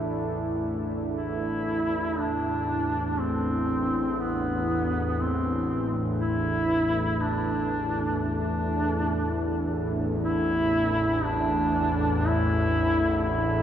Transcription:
Already playing: synth drone A1 E2, ambient pad A3 D4 E4 A4
1.16 duduk E4
2.19 synth drone A1 E2, duduk D4
3.20 duduk C4
4.20 duduk B3
5.20 duduk C4
6.21 duduk E4
7.21 duduk D4
8.22 duduk D4
10.25 duduk E4
11.25 duduk D4
12.27 duduk E4
13.24 duduk E4

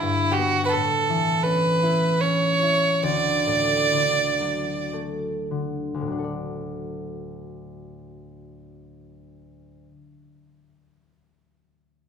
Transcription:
Already playing: harp D3 A3 B3
0.00 harp G2, fiddle E4
0.32 fiddle F#4 G4
0.38 harp B3
0.66 fiddle A4 B4
0.74 harp A2
1.10 harp E3
1.43 harp C#4, fiddle B4
1.83 harp E4
2.21 harp C#4, fiddle C#5
2.63 harp E4
3.03 harp D2, fiddle D5
3.46 harp A2
3.91 harp D3
4.41 harp F#3
4.93 harp A3
5.51 harp D3
5.94 harp D2
6.01 harp A2
6.07 harp F#3
6.12 harp D4
6.18 harp A4
6.24 harp D5

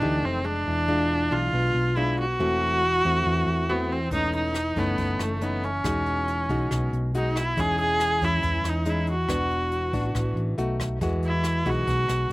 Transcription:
Already playing: nylon-string guitar E3, viola D4
0.01 fingered electric bass D2, nylon-string guitar A3 D#4 G4
0.23 fingered electric bass F1, viola C4
0.44 nylon-string guitar G#3 D4, viola D4
0.67 fingered electric bass E1, nylon-string guitar E3
0.88 nylon-string guitar G#3 D4 F4
1.31 fingered electric bass B1, nylon-string guitar G#3 D4 F4, viola F4
1.53 fingered electric bass B1, nylon-string guitar B2
1.74 fingered electric bass B1
1.97 nylon-string guitar G#3 D4 F4, viola E4
2.19 viola F#4
2.39 fingered electric bass E1, nylon-string guitar E3 A3 C4 F#4
3.05 fingered electric bass E2, nylon-string guitar A3 C4 F#4
3.25 fingered electric bass E2, nylon-string guitar E3
3.46 fingered electric bass E2
3.69 nylon-string guitar A3 C4 F#4, viola B3
3.92 viola C4
4.11 fingered electric bass E1, nylon-string guitar E3 A3 C#4 D#4, viola D#4, kick, closed hi-hat
4.33 viola D#4, closed hi-hat
4.54 cross-stick, closed hi-hat
4.76 fingered electric bass F#1, nylon-string guitar A3 C#4 D#4, viola B3, kick, closed hi-hat
4.98 fingered electric bass F#1, nylon-string guitar E3, kick, closed hi-hat
5.19 fingered electric bass F#1, viola A3, cross-stick, closed hi-hat
5.41 nylon-string guitar A3 C#4 D#4, viola B3, closed hi-hat
5.63 viola C#4, closed hi-hat
5.84 fingered electric bass E1, nylon-string guitar E3 G#3 D#4 F#4, kick, cross-stick, closed hi-hat
6.06 closed hi-hat
6.28 closed hi-hat
6.49 fingered electric bass B1, nylon-string guitar G#3 D#4 F#4, kick, closed hi-hat
6.71 fingered electric bass B1, nylon-string guitar B2, kick, cross-stick, closed hi-hat
6.93 fingered electric bass B1, closed hi-hat
7.14 nylon-string guitar G#3 D#4 F#4, viola D#4, closed hi-hat
7.36 viola E4, cross-stick, closed hi-hat
7.57 fingered electric bass E1, nylon-string guitar E3 G#3 C#4 D#4, viola G#4, kick, closed hi-hat
7.79 viola G#4, closed hi-hat
8.00 cross-stick, closed hi-hat
8.21 fingered electric bass E2, nylon-string guitar G#3 C#4, viola E4, kick, closed hi-hat
8.42 fingered electric bass E2, nylon-string guitar E3, kick, closed hi-hat
8.64 fingered electric bass E2, cross-stick, closed hi-hat
8.69 viola D#4
8.85 nylon-string guitar G#3 C#4 D#4, closed hi-hat
8.89 viola E4
9.07 viola F#4, closed hi-hat
9.29 fingered electric bass E1, nylon-string guitar E3 B3 D4 F#4, kick, cross-stick, closed hi-hat
9.50 closed hi-hat
9.72 closed hi-hat
9.93 fingered electric bass A1, nylon-string guitar B3 D4 F#4, kick, closed hi-hat
10.15 fingered electric bass A1, nylon-string guitar E3, kick, cross-stick, closed hi-hat
10.36 fingered electric bass A1, closed hi-hat
10.58 fingered electric bass B1, nylon-string guitar A3 D#4 F#4, closed hi-hat
10.80 kick, cross-stick, closed hi-hat
11.01 fingered electric bass E2, nylon-string guitar E3 G#3 F#4, kick, closed hi-hat
11.22 viola E4, closed hi-hat
11.44 cross-stick, closed hi-hat
11.66 fingered electric bass B1, nylon-string guitar G#3 D#4 F#4, viola F#4, kick, closed hi-hat
11.87 fingered electric bass B1, nylon-string guitar B2, kick, closed hi-hat
12.09 fingered electric bass B1, cross-stick, closed hi-hat

